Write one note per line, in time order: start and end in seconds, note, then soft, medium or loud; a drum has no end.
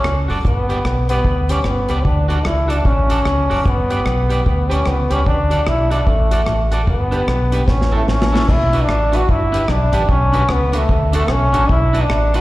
0.00 0.18 C#4 medium
0.04 0.25 C#2 medium
0.04 cross-stick loud
0.28 0.42 F#1 medium
0.28 0.37 F#4 medium
0.28 0.38 A4 medium
0.28 0.38 D5 loud
0.28 open hi-hat soft
0.45 0.79 G1 medium
0.45 1.07 B3 loud
0.45 kick loud
0.45 hi-hat pedal medium
0.69 0.78 G4 medium
0.69 0.78 B4 medium
0.69 0.79 D5 medium
0.69 closed hi-hat medium
0.85 1.19 B1 medium
0.85 cross-stick loud
1.09 1.52 B3 loud
1.09 1.19 G4 medium
1.09 1.19 B4 medium
1.09 1.19 D5 medium
1.09 closed hi-hat medium
1.25 1.59 D2 medium
1.25 kick medium
1.49 1.68 C#4 medium
1.49 1.58 G4 medium
1.49 1.59 B4 medium
1.49 1.59 D5 medium
1.49 closed hi-hat loud
1.64 1.86 G1 medium
1.64 2.06 B3 medium
1.64 cross-stick medium
1.89 2.03 C#2 medium
1.89 1.98 G4 medium
1.89 1.98 B4 medium
1.89 1.99 D5 medium
1.89 closed hi-hat medium
2.04 2.39 D2 loud
2.04 2.29 D4 medium
2.04 kick loud
2.28 2.47 D4 medium
2.28 2.38 F#4 medium
2.28 2.38 A4 medium
2.28 2.39 D5 medium
2.28 closed hi-hat medium
2.45 2.80 C#2 medium
2.45 2.71 E4 loud
2.45 cross-stick loud
2.68 2.87 D4 medium
2.68 2.77 F#4 medium
2.68 2.78 A4 medium
2.68 2.78 D5 medium
2.68 closed hi-hat medium
2.85 3.19 A1 medium
2.85 3.66 C#4 loud
2.85 kick loud
3.10 3.18 F#4 medium
3.10 3.19 A4 medium
3.10 3.19 D5 loud
3.10 closed hi-hat loud
3.25 3.47 C#2 medium
3.25 cross-stick loud
3.50 3.64 F#1 medium
3.50 3.59 F#4 medium
3.50 3.59 A4 medium
3.50 3.59 D5 medium
3.50 open hi-hat medium
3.65 4.00 G1 loud
3.65 4.43 B3 loud
3.65 kick loud
3.65 hi-hat pedal medium
3.90 3.99 G4 medium
3.90 3.99 B4 medium
3.90 4.00 D5 medium
3.90 closed hi-hat medium
4.06 4.40 B1 medium
4.06 cross-stick loud
4.29 4.39 G4 medium
4.29 4.40 B4 medium
4.29 4.40 D5 medium
4.29 closed hi-hat medium
4.46 4.80 D2 loud
4.46 4.73 B3 medium
4.46 kick medium
4.69 4.89 C#4 medium
4.69 4.79 G4 medium
4.69 4.79 B4 medium
4.69 4.80 D5 medium
4.69 closed hi-hat medium
4.85 5.08 C#2 medium
4.85 5.14 B3 medium
4.85 cross-stick medium
5.10 5.24 C#2 medium
5.10 5.26 C#4 medium
5.10 5.19 G4 medium
5.10 5.20 B4 medium
5.10 5.20 D5 medium
5.10 closed hi-hat medium
5.26 5.61 D2 medium
5.26 5.70 D4 loud
5.26 kick loud
5.50 5.59 F#4 medium
5.50 5.60 A4 medium
5.50 5.60 D5 medium
5.50 closed hi-hat medium
5.67 6.01 B1 medium
5.67 5.94 E4 loud
5.67 cross-stick loud
5.91 6.09 D4 medium
5.91 6.00 F#4 medium
5.91 6.00 A4 medium
5.91 6.00 D5 medium
5.91 closed hi-hat medium
6.07 6.41 A1 loud
6.07 6.64 A3 medium
6.07 kick loud
6.31 6.40 F#4 medium
6.31 6.41 A4 medium
6.31 6.41 D5 medium
6.31 closed hi-hat loud
6.46 6.89 A1 medium
6.46 cross-stick loud
6.72 6.80 F#4 medium
6.72 6.81 A4 medium
6.72 6.81 D5 medium
6.72 closed hi-hat medium
6.87 7.22 G1 medium
6.87 7.71 B3 loud
6.87 kick loud
7.11 7.20 D4 medium
7.11 7.21 G4 medium
7.11 7.22 B4 medium
7.11 closed hi-hat medium
7.28 7.62 B1 medium
7.28 cross-stick loud
7.52 7.61 D4 medium
7.52 7.61 G4 medium
7.52 7.62 B4 medium
7.52 closed hi-hat medium
7.68 8.02 A1 loud
7.68 7.93 C#4 medium
7.68 kick medium
7.68 snare medium
7.81 snare medium
7.92 8.11 A3 medium
7.92 8.01 E4 medium
7.92 8.01 A4 medium
7.92 8.02 C#5 medium
8.08 8.42 A1 medium
8.08 8.53 C#4 loud
8.08 snare medium
8.22 snare medium
8.32 8.41 E4 medium
8.32 8.42 A4 medium
8.32 8.42 C#5 medium
8.32 snare medium
8.49 8.83 B1 loud
8.49 8.84 E4 loud
8.49 kick loud
8.49 crash medium
8.73 8.81 D4 medium
8.73 8.82 F#4 medium
8.73 8.82 B4 medium
8.73 closed hi-hat medium
8.83 9.17 D4 loud
8.89 9.23 A1 medium
8.89 cross-stick loud
9.12 9.21 D4 medium
9.12 9.21 F#4 medium
9.12 9.32 F#4 loud
9.12 9.22 B4 medium
9.12 closed hi-hat medium
9.29 9.63 G1 loud
9.29 9.73 E4 loud
9.29 kick medium
9.52 9.61 D4 medium
9.52 9.62 G4 medium
9.52 9.62 B4 medium
9.52 closed hi-hat loud
9.68 9.90 B1 medium
9.68 10.11 D4 loud
9.68 cross-stick loud
9.92 10.06 A1 medium
9.92 10.01 D4 medium
9.92 10.02 G4 loud
9.92 10.02 B4 medium
9.92 closed hi-hat medium
10.09 10.43 B1 loud
10.09 10.53 C#4 loud
10.09 kick loud
10.32 10.41 D4 medium
10.32 10.42 F#4 medium
10.32 10.42 B4 loud
10.32 closed hi-hat medium
10.49 10.83 C#2 loud
10.49 10.78 B3 loud
10.49 cross-stick loud
10.72 11.15 A3 loud
10.72 10.82 D4 medium
10.72 10.82 F#4 medium
10.72 10.83 B4 medium
10.72 closed hi-hat loud
10.89 11.23 D2 loud
10.89 kick medium
11.13 11.32 A3 loud
11.13 11.22 D4 medium
11.13 11.22 F#4 medium
11.13 11.23 A4 loud
11.13 closed hi-hat loud
11.28 11.50 B1 medium
11.28 11.72 C#4 loud
11.28 cross-stick loud
11.53 11.67 A1 medium
11.53 11.62 D4 medium
11.53 11.62 F#4 loud
11.53 11.63 A4 medium
11.53 closed hi-hat medium
11.69 12.03 B1 loud
11.69 12.04 E4 loud
11.69 kick loud
11.93 12.02 D4 loud
11.93 12.03 F#4 medium
11.93 12.03 B4 medium
11.93 closed hi-hat medium
12.03 12.38 D4 loud
12.10 12.41 A1 medium
12.10 cross-stick loud
12.34 12.41 D4 medium
12.34 12.41 F#4 medium
12.34 12.41 F#4 loud
12.34 12.41 B4 medium
12.34 closed hi-hat medium